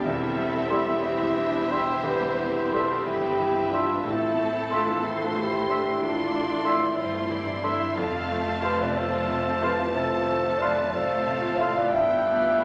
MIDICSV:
0, 0, Header, 1, 12, 480
1, 0, Start_track
1, 0, Key_signature, 0, "major"
1, 0, Tempo, 669643
1, 29, Time_signature, 12, 3, 24, 8
1, 2429, Tempo, 652884
1, 5789, Tempo, 660793
1, 9191, End_track
2, 0, Start_track
2, 0, Title_t, "Flute"
2, 0, Program_c, 0, 73
2, 501, Note_on_c, 0, 84, 61
2, 616, Note_off_c, 0, 84, 0
2, 1228, Note_on_c, 0, 84, 56
2, 1338, Note_off_c, 0, 84, 0
2, 1958, Note_on_c, 0, 84, 63
2, 2066, Note_off_c, 0, 84, 0
2, 2684, Note_on_c, 0, 84, 54
2, 2790, Note_off_c, 0, 84, 0
2, 3398, Note_on_c, 0, 84, 64
2, 3512, Note_off_c, 0, 84, 0
2, 4125, Note_on_c, 0, 84, 61
2, 4232, Note_off_c, 0, 84, 0
2, 4823, Note_on_c, 0, 84, 71
2, 4935, Note_off_c, 0, 84, 0
2, 5551, Note_on_c, 0, 84, 58
2, 5661, Note_off_c, 0, 84, 0
2, 6283, Note_on_c, 0, 84, 60
2, 6389, Note_off_c, 0, 84, 0
2, 7006, Note_on_c, 0, 84, 64
2, 7111, Note_off_c, 0, 84, 0
2, 7719, Note_on_c, 0, 84, 66
2, 7821, Note_off_c, 0, 84, 0
2, 8438, Note_on_c, 0, 84, 59
2, 8541, Note_off_c, 0, 84, 0
2, 9157, Note_on_c, 0, 83, 60
2, 9191, Note_off_c, 0, 83, 0
2, 9191, End_track
3, 0, Start_track
3, 0, Title_t, "Violin section"
3, 0, Program_c, 1, 48
3, 44, Note_on_c, 1, 76, 62
3, 2198, Note_off_c, 1, 76, 0
3, 2210, Note_on_c, 1, 76, 57
3, 2907, Note_off_c, 1, 76, 0
3, 2937, Note_on_c, 1, 81, 57
3, 3654, Note_off_c, 1, 81, 0
3, 3660, Note_on_c, 1, 84, 58
3, 4359, Note_off_c, 1, 84, 0
3, 4368, Note_on_c, 1, 84, 73
3, 5058, Note_off_c, 1, 84, 0
3, 5073, Note_on_c, 1, 84, 54
3, 5779, Note_off_c, 1, 84, 0
3, 5793, Note_on_c, 1, 81, 60
3, 6509, Note_off_c, 1, 81, 0
3, 6517, Note_on_c, 1, 81, 65
3, 7915, Note_off_c, 1, 81, 0
3, 7954, Note_on_c, 1, 77, 61
3, 8652, Note_off_c, 1, 77, 0
3, 8685, Note_on_c, 1, 79, 60
3, 9191, Note_off_c, 1, 79, 0
3, 9191, End_track
4, 0, Start_track
4, 0, Title_t, "Oboe"
4, 0, Program_c, 2, 68
4, 518, Note_on_c, 2, 76, 64
4, 598, Note_off_c, 2, 76, 0
4, 1242, Note_on_c, 2, 76, 66
4, 1320, Note_off_c, 2, 76, 0
4, 1977, Note_on_c, 2, 76, 63
4, 2052, Note_off_c, 2, 76, 0
4, 2691, Note_on_c, 2, 76, 58
4, 2768, Note_off_c, 2, 76, 0
4, 3420, Note_on_c, 2, 76, 65
4, 3498, Note_off_c, 2, 76, 0
4, 4139, Note_on_c, 2, 76, 67
4, 4214, Note_off_c, 2, 76, 0
4, 4836, Note_on_c, 2, 76, 65
4, 4915, Note_off_c, 2, 76, 0
4, 5561, Note_on_c, 2, 76, 58
4, 5640, Note_off_c, 2, 76, 0
4, 6280, Note_on_c, 2, 77, 58
4, 6360, Note_off_c, 2, 77, 0
4, 7008, Note_on_c, 2, 77, 65
4, 7086, Note_off_c, 2, 77, 0
4, 7721, Note_on_c, 2, 77, 64
4, 7797, Note_off_c, 2, 77, 0
4, 8447, Note_on_c, 2, 77, 56
4, 8521, Note_off_c, 2, 77, 0
4, 9191, End_track
5, 0, Start_track
5, 0, Title_t, "Violin section"
5, 0, Program_c, 3, 48
5, 25, Note_on_c, 3, 76, 76
5, 733, Note_off_c, 3, 76, 0
5, 745, Note_on_c, 3, 72, 74
5, 2187, Note_on_c, 3, 71, 68
5, 2188, Note_off_c, 3, 72, 0
5, 2909, Note_off_c, 3, 71, 0
5, 2931, Note_on_c, 3, 69, 73
5, 3637, Note_off_c, 3, 69, 0
5, 3646, Note_on_c, 3, 72, 67
5, 4353, Note_on_c, 3, 74, 75
5, 4357, Note_off_c, 3, 72, 0
5, 5050, Note_off_c, 3, 74, 0
5, 5060, Note_on_c, 3, 72, 65
5, 5305, Note_off_c, 3, 72, 0
5, 5306, Note_on_c, 3, 74, 66
5, 5547, Note_off_c, 3, 74, 0
5, 5555, Note_on_c, 3, 76, 73
5, 5793, Note_off_c, 3, 76, 0
5, 5799, Note_on_c, 3, 77, 78
5, 6501, Note_off_c, 3, 77, 0
5, 6510, Note_on_c, 3, 81, 83
5, 8630, Note_off_c, 3, 81, 0
5, 8654, Note_on_c, 3, 79, 75
5, 8895, Note_off_c, 3, 79, 0
5, 8907, Note_on_c, 3, 74, 70
5, 9149, Note_off_c, 3, 74, 0
5, 9156, Note_on_c, 3, 76, 58
5, 9191, Note_off_c, 3, 76, 0
5, 9191, End_track
6, 0, Start_track
6, 0, Title_t, "French horn section"
6, 0, Program_c, 4, 60
6, 17, Note_on_c, 4, 60, 82
6, 495, Note_off_c, 4, 60, 0
6, 496, Note_on_c, 4, 64, 87
6, 1219, Note_off_c, 4, 64, 0
6, 1225, Note_on_c, 4, 67, 75
6, 1464, Note_on_c, 4, 71, 85
6, 1466, Note_off_c, 4, 67, 0
6, 1944, Note_on_c, 4, 69, 74
6, 1950, Note_off_c, 4, 71, 0
6, 2187, Note_off_c, 4, 69, 0
6, 2189, Note_on_c, 4, 67, 89
6, 2668, Note_on_c, 4, 65, 80
6, 2671, Note_off_c, 4, 67, 0
6, 2909, Note_off_c, 4, 65, 0
6, 2936, Note_on_c, 4, 64, 79
6, 3288, Note_off_c, 4, 64, 0
6, 3413, Note_on_c, 4, 65, 76
6, 3645, Note_off_c, 4, 65, 0
6, 3653, Note_on_c, 4, 64, 77
6, 3768, Note_off_c, 4, 64, 0
6, 3792, Note_on_c, 4, 65, 79
6, 3897, Note_off_c, 4, 65, 0
6, 3902, Note_on_c, 4, 67, 84
6, 4364, Note_off_c, 4, 67, 0
6, 4366, Note_on_c, 4, 65, 76
6, 4830, Note_off_c, 4, 65, 0
6, 4848, Note_on_c, 4, 64, 74
6, 5077, Note_off_c, 4, 64, 0
6, 5799, Note_on_c, 4, 69, 89
6, 6248, Note_off_c, 4, 69, 0
6, 6276, Note_on_c, 4, 71, 81
6, 6393, Note_off_c, 4, 71, 0
6, 6415, Note_on_c, 4, 74, 82
6, 6516, Note_on_c, 4, 72, 89
6, 6523, Note_off_c, 4, 74, 0
6, 6996, Note_off_c, 4, 72, 0
6, 7006, Note_on_c, 4, 71, 81
6, 7230, Note_on_c, 4, 72, 87
6, 7238, Note_off_c, 4, 71, 0
6, 7693, Note_off_c, 4, 72, 0
6, 7696, Note_on_c, 4, 74, 75
6, 7924, Note_on_c, 4, 72, 85
6, 7937, Note_off_c, 4, 74, 0
6, 8411, Note_off_c, 4, 72, 0
6, 8414, Note_on_c, 4, 77, 88
6, 8536, Note_off_c, 4, 77, 0
6, 8546, Note_on_c, 4, 74, 87
6, 8660, Note_on_c, 4, 76, 102
6, 8663, Note_off_c, 4, 74, 0
6, 9191, Note_off_c, 4, 76, 0
6, 9191, End_track
7, 0, Start_track
7, 0, Title_t, "Clarinet"
7, 0, Program_c, 5, 71
7, 17, Note_on_c, 5, 55, 69
7, 515, Note_on_c, 5, 60, 69
7, 526, Note_off_c, 5, 55, 0
7, 1233, Note_on_c, 5, 64, 74
7, 1244, Note_off_c, 5, 60, 0
7, 1464, Note_on_c, 5, 67, 86
7, 1474, Note_off_c, 5, 64, 0
7, 1963, Note_on_c, 5, 65, 71
7, 1973, Note_off_c, 5, 67, 0
7, 2201, Note_on_c, 5, 64, 82
7, 2212, Note_off_c, 5, 65, 0
7, 2677, Note_off_c, 5, 64, 0
7, 2684, Note_on_c, 5, 62, 63
7, 2913, Note_off_c, 5, 62, 0
7, 2919, Note_on_c, 5, 60, 75
7, 3411, Note_on_c, 5, 62, 68
7, 3422, Note_off_c, 5, 60, 0
7, 3655, Note_on_c, 5, 60, 78
7, 3666, Note_off_c, 5, 62, 0
7, 3767, Note_off_c, 5, 60, 0
7, 3771, Note_on_c, 5, 62, 67
7, 3901, Note_on_c, 5, 64, 81
7, 3912, Note_off_c, 5, 62, 0
7, 4199, Note_off_c, 5, 64, 0
7, 4367, Note_on_c, 5, 62, 63
7, 4828, Note_on_c, 5, 60, 71
7, 4839, Note_off_c, 5, 62, 0
7, 5067, Note_off_c, 5, 60, 0
7, 5790, Note_on_c, 5, 65, 77
7, 6266, Note_on_c, 5, 67, 76
7, 6277, Note_off_c, 5, 65, 0
7, 6393, Note_on_c, 5, 71, 69
7, 6404, Note_off_c, 5, 67, 0
7, 6514, Note_on_c, 5, 69, 79
7, 6525, Note_off_c, 5, 71, 0
7, 7002, Note_on_c, 5, 67, 69
7, 7013, Note_off_c, 5, 69, 0
7, 7241, Note_on_c, 5, 69, 81
7, 7252, Note_off_c, 5, 67, 0
7, 7709, Note_on_c, 5, 71, 82
7, 7719, Note_off_c, 5, 69, 0
7, 7952, Note_on_c, 5, 69, 78
7, 7963, Note_off_c, 5, 71, 0
7, 8425, Note_off_c, 5, 69, 0
7, 8434, Note_on_c, 5, 74, 66
7, 8544, Note_off_c, 5, 74, 0
7, 8558, Note_on_c, 5, 71, 71
7, 8666, Note_off_c, 5, 71, 0
7, 8682, Note_on_c, 5, 71, 94
7, 9191, Note_off_c, 5, 71, 0
7, 9191, End_track
8, 0, Start_track
8, 0, Title_t, "Viola section"
8, 0, Program_c, 6, 48
8, 19, Note_on_c, 6, 60, 65
8, 20, Note_on_c, 6, 69, 70
8, 733, Note_off_c, 6, 60, 0
8, 737, Note_on_c, 6, 67, 61
8, 742, Note_on_c, 6, 60, 68
8, 745, Note_off_c, 6, 69, 0
8, 976, Note_on_c, 6, 62, 66
8, 980, Note_off_c, 6, 60, 0
8, 1215, Note_on_c, 6, 60, 67
8, 1216, Note_off_c, 6, 62, 0
8, 1455, Note_off_c, 6, 67, 0
8, 1463, Note_on_c, 6, 67, 67
8, 2880, Note_off_c, 6, 67, 0
8, 2906, Note_off_c, 6, 60, 0
8, 2916, Note_on_c, 6, 69, 67
8, 2917, Note_on_c, 6, 60, 62
8, 3630, Note_off_c, 6, 60, 0
8, 3636, Note_on_c, 6, 57, 57
8, 4345, Note_off_c, 6, 69, 0
8, 4351, Note_on_c, 6, 62, 66
8, 4352, Note_off_c, 6, 57, 0
8, 4354, Note_on_c, 6, 69, 58
8, 5050, Note_off_c, 6, 69, 0
8, 5055, Note_on_c, 6, 60, 65
8, 5055, Note_on_c, 6, 65, 65
8, 5063, Note_off_c, 6, 62, 0
8, 5297, Note_off_c, 6, 65, 0
8, 5299, Note_on_c, 6, 64, 65
8, 5531, Note_off_c, 6, 64, 0
8, 5540, Note_on_c, 6, 64, 59
8, 5781, Note_off_c, 6, 64, 0
8, 5783, Note_on_c, 6, 65, 68
8, 7199, Note_off_c, 6, 65, 0
8, 7230, Note_on_c, 6, 69, 62
8, 7936, Note_off_c, 6, 60, 0
8, 7940, Note_off_c, 6, 69, 0
8, 7946, Note_on_c, 6, 60, 67
8, 7948, Note_on_c, 6, 65, 61
8, 8648, Note_off_c, 6, 60, 0
8, 8663, Note_off_c, 6, 65, 0
8, 8666, Note_on_c, 6, 64, 65
8, 8672, Note_on_c, 6, 59, 66
8, 8906, Note_off_c, 6, 59, 0
8, 8915, Note_on_c, 6, 59, 68
8, 9148, Note_off_c, 6, 59, 0
8, 9155, Note_on_c, 6, 57, 72
8, 9191, Note_off_c, 6, 57, 0
8, 9191, Note_off_c, 6, 64, 0
8, 9191, End_track
9, 0, Start_track
9, 0, Title_t, "Bassoon"
9, 0, Program_c, 7, 70
9, 509, Note_on_c, 7, 55, 64
9, 593, Note_off_c, 7, 55, 0
9, 1228, Note_on_c, 7, 55, 63
9, 1311, Note_off_c, 7, 55, 0
9, 1958, Note_on_c, 7, 55, 60
9, 2039, Note_off_c, 7, 55, 0
9, 2682, Note_on_c, 7, 55, 61
9, 2762, Note_off_c, 7, 55, 0
9, 3410, Note_on_c, 7, 57, 63
9, 3491, Note_off_c, 7, 57, 0
9, 4128, Note_on_c, 7, 57, 59
9, 4207, Note_off_c, 7, 57, 0
9, 4821, Note_on_c, 7, 57, 60
9, 4906, Note_off_c, 7, 57, 0
9, 5550, Note_on_c, 7, 57, 59
9, 5633, Note_off_c, 7, 57, 0
9, 6273, Note_on_c, 7, 57, 61
9, 6356, Note_off_c, 7, 57, 0
9, 6993, Note_on_c, 7, 57, 64
9, 7076, Note_off_c, 7, 57, 0
9, 7714, Note_on_c, 7, 57, 55
9, 7793, Note_off_c, 7, 57, 0
9, 8430, Note_on_c, 7, 57, 65
9, 8510, Note_off_c, 7, 57, 0
9, 9153, Note_on_c, 7, 57, 64
9, 9191, Note_off_c, 7, 57, 0
9, 9191, End_track
10, 0, Start_track
10, 0, Title_t, "Grand piano"
10, 0, Program_c, 8, 0
10, 0, Control_c, 8, 64, 127
10, 41, Note_on_c, 8, 40, 68
10, 44, Control_c, 8, 64, 0
10, 159, Control_c, 8, 64, 127
10, 167, Note_on_c, 8, 64, 53
10, 274, Note_on_c, 8, 55, 58
10, 351, Note_off_c, 8, 64, 0
10, 404, Note_on_c, 8, 64, 52
10, 464, Note_off_c, 8, 55, 0
10, 513, Note_on_c, 8, 55, 59
10, 588, Note_off_c, 8, 64, 0
10, 641, Note_on_c, 8, 52, 58
10, 703, Note_off_c, 8, 55, 0
10, 754, Note_on_c, 8, 64, 57
10, 827, Note_off_c, 8, 52, 0
10, 874, Note_on_c, 8, 55, 56
10, 943, Note_off_c, 8, 64, 0
10, 987, Note_on_c, 8, 52, 53
10, 1063, Note_off_c, 8, 55, 0
10, 1110, Note_on_c, 8, 64, 57
10, 1178, Note_off_c, 8, 52, 0
10, 1215, Note_on_c, 8, 62, 43
10, 1300, Note_off_c, 8, 64, 0
10, 1339, Note_on_c, 8, 64, 57
10, 1341, Note_off_c, 8, 62, 0
10, 1444, Note_off_c, 8, 40, 0
10, 1459, Note_on_c, 8, 40, 64
10, 1536, Note_off_c, 8, 64, 0
10, 1584, Note_on_c, 8, 55, 60
10, 1715, Note_on_c, 8, 52, 58
10, 1780, Note_off_c, 8, 55, 0
10, 1844, Note_on_c, 8, 64, 52
10, 1906, Note_off_c, 8, 52, 0
10, 1954, Note_on_c, 8, 55, 50
10, 2029, Note_off_c, 8, 64, 0
10, 2074, Note_on_c, 8, 52, 52
10, 2144, Note_off_c, 8, 55, 0
10, 2197, Note_on_c, 8, 64, 66
10, 2264, Note_off_c, 8, 52, 0
10, 2306, Note_on_c, 8, 55, 59
10, 2385, Note_off_c, 8, 64, 0
10, 2435, Note_on_c, 8, 52, 57
10, 2500, Note_off_c, 8, 55, 0
10, 2548, Note_on_c, 8, 64, 62
10, 2626, Note_off_c, 8, 52, 0
10, 2669, Note_on_c, 8, 62, 49
10, 2742, Note_off_c, 8, 64, 0
10, 2784, Note_on_c, 8, 64, 53
10, 2790, Note_off_c, 8, 62, 0
10, 2878, Note_off_c, 8, 40, 0
10, 2905, Note_on_c, 8, 45, 66
10, 2907, Note_off_c, 8, 64, 0
10, 2923, Control_c, 8, 64, 0
10, 3018, Note_on_c, 8, 64, 54
10, 3053, Control_c, 8, 64, 127
10, 3147, Note_on_c, 8, 57, 60
10, 3218, Note_off_c, 8, 64, 0
10, 3264, Note_on_c, 8, 64, 57
10, 3345, Note_off_c, 8, 57, 0
10, 3397, Note_on_c, 8, 57, 64
10, 3466, Note_off_c, 8, 64, 0
10, 3521, Note_on_c, 8, 52, 53
10, 3593, Note_off_c, 8, 57, 0
10, 3634, Note_on_c, 8, 64, 59
10, 3715, Note_off_c, 8, 52, 0
10, 3751, Note_on_c, 8, 57, 55
10, 3830, Note_off_c, 8, 64, 0
10, 3871, Note_on_c, 8, 52, 54
10, 3948, Note_off_c, 8, 57, 0
10, 4000, Note_on_c, 8, 64, 56
10, 4066, Note_off_c, 8, 52, 0
10, 4122, Note_on_c, 8, 62, 45
10, 4189, Note_off_c, 8, 64, 0
10, 4238, Note_off_c, 8, 62, 0
10, 4240, Note_on_c, 8, 64, 61
10, 4322, Note_off_c, 8, 45, 0
10, 4364, Note_on_c, 8, 52, 59
10, 4426, Note_off_c, 8, 64, 0
10, 4470, Note_on_c, 8, 64, 53
10, 4547, Note_off_c, 8, 52, 0
10, 4595, Note_on_c, 8, 57, 51
10, 4658, Note_off_c, 8, 64, 0
10, 4712, Note_on_c, 8, 64, 55
10, 4780, Note_off_c, 8, 57, 0
10, 4835, Note_on_c, 8, 57, 48
10, 4899, Note_off_c, 8, 64, 0
10, 4938, Note_on_c, 8, 52, 55
10, 5022, Note_off_c, 8, 57, 0
10, 5062, Note_off_c, 8, 52, 0
10, 5062, Note_on_c, 8, 64, 65
10, 5189, Note_on_c, 8, 57, 60
10, 5258, Note_off_c, 8, 64, 0
10, 5300, Note_on_c, 8, 52, 53
10, 5381, Note_off_c, 8, 57, 0
10, 5434, Note_on_c, 8, 64, 64
10, 5496, Note_off_c, 8, 52, 0
10, 5549, Note_on_c, 8, 62, 49
10, 5623, Note_off_c, 8, 64, 0
10, 5668, Note_off_c, 8, 62, 0
10, 5670, Note_on_c, 8, 64, 56
10, 5791, Note_off_c, 8, 64, 0
10, 5801, Control_c, 8, 64, 0
10, 5802, Note_on_c, 8, 41, 69
10, 5903, Control_c, 8, 64, 127
10, 5920, Note_on_c, 8, 65, 56
10, 6045, Note_on_c, 8, 57, 67
10, 6109, Note_off_c, 8, 65, 0
10, 6170, Note_on_c, 8, 65, 56
10, 6231, Note_off_c, 8, 57, 0
10, 6287, Note_on_c, 8, 57, 58
10, 6353, Note_off_c, 8, 65, 0
10, 6408, Note_on_c, 8, 48, 59
10, 6471, Note_off_c, 8, 57, 0
10, 6525, Note_on_c, 8, 65, 55
10, 6591, Note_off_c, 8, 48, 0
10, 6648, Note_on_c, 8, 57, 59
10, 6710, Note_off_c, 8, 65, 0
10, 6764, Note_on_c, 8, 48, 51
10, 6833, Note_off_c, 8, 57, 0
10, 6876, Note_on_c, 8, 65, 60
10, 6951, Note_off_c, 8, 48, 0
10, 7003, Note_on_c, 8, 64, 45
10, 7067, Note_off_c, 8, 65, 0
10, 7118, Note_off_c, 8, 64, 0
10, 7124, Note_on_c, 8, 65, 62
10, 7209, Note_off_c, 8, 41, 0
10, 7241, Note_on_c, 8, 48, 58
10, 7308, Note_off_c, 8, 65, 0
10, 7368, Note_on_c, 8, 65, 57
10, 7425, Note_off_c, 8, 48, 0
10, 7482, Note_on_c, 8, 57, 58
10, 7547, Note_off_c, 8, 65, 0
10, 7596, Note_on_c, 8, 65, 55
10, 7663, Note_off_c, 8, 57, 0
10, 7709, Note_on_c, 8, 57, 52
10, 7779, Note_off_c, 8, 65, 0
10, 7831, Note_on_c, 8, 48, 51
10, 7896, Note_off_c, 8, 57, 0
10, 7955, Note_on_c, 8, 65, 56
10, 8017, Note_off_c, 8, 48, 0
10, 8064, Note_on_c, 8, 57, 56
10, 8139, Note_off_c, 8, 65, 0
10, 8190, Note_on_c, 8, 48, 59
10, 8254, Note_off_c, 8, 57, 0
10, 8300, Note_on_c, 8, 65, 65
10, 8377, Note_off_c, 8, 48, 0
10, 8420, Note_on_c, 8, 64, 50
10, 8491, Note_off_c, 8, 65, 0
10, 8539, Note_off_c, 8, 64, 0
10, 8544, Note_on_c, 8, 65, 59
10, 8662, Note_off_c, 8, 65, 0
10, 8665, Note_on_c, 8, 43, 72
10, 8672, Control_c, 8, 64, 0
10, 8789, Note_on_c, 8, 65, 55
10, 8796, Control_c, 8, 64, 127
10, 8897, Note_on_c, 8, 57, 58
10, 8980, Note_off_c, 8, 65, 0
10, 9013, Note_on_c, 8, 65, 56
10, 9095, Note_off_c, 8, 57, 0
10, 9147, Note_on_c, 8, 57, 64
10, 9191, Note_off_c, 8, 43, 0
10, 9191, Note_off_c, 8, 57, 0
10, 9191, Note_off_c, 8, 65, 0
10, 9191, End_track
11, 0, Start_track
11, 0, Title_t, "Cello section"
11, 0, Program_c, 10, 48
11, 31, Note_on_c, 10, 40, 68
11, 2163, Note_off_c, 10, 40, 0
11, 2207, Note_on_c, 10, 43, 68
11, 2905, Note_off_c, 10, 43, 0
11, 2925, Note_on_c, 10, 45, 70
11, 5042, Note_off_c, 10, 45, 0
11, 5076, Note_on_c, 10, 43, 63
11, 5781, Note_off_c, 10, 43, 0
11, 5801, Note_on_c, 10, 41, 75
11, 7946, Note_off_c, 10, 41, 0
11, 7951, Note_on_c, 10, 45, 65
11, 8663, Note_on_c, 10, 43, 74
11, 8665, Note_off_c, 10, 45, 0
11, 9191, Note_off_c, 10, 43, 0
11, 9191, End_track
12, 0, Start_track
12, 0, Title_t, "Double bass section"
12, 0, Program_c, 11, 48
12, 24, Note_on_c, 11, 28, 65
12, 2160, Note_off_c, 11, 28, 0
12, 2194, Note_on_c, 11, 31, 63
12, 2898, Note_off_c, 11, 31, 0
12, 2918, Note_on_c, 11, 33, 67
12, 5039, Note_off_c, 11, 33, 0
12, 5076, Note_on_c, 11, 31, 65
12, 5780, Note_off_c, 11, 31, 0
12, 5790, Note_on_c, 11, 29, 61
12, 7941, Note_off_c, 11, 29, 0
12, 7949, Note_on_c, 11, 33, 63
12, 8662, Note_on_c, 11, 31, 68
12, 8664, Note_off_c, 11, 33, 0
12, 9191, Note_off_c, 11, 31, 0
12, 9191, End_track
0, 0, End_of_file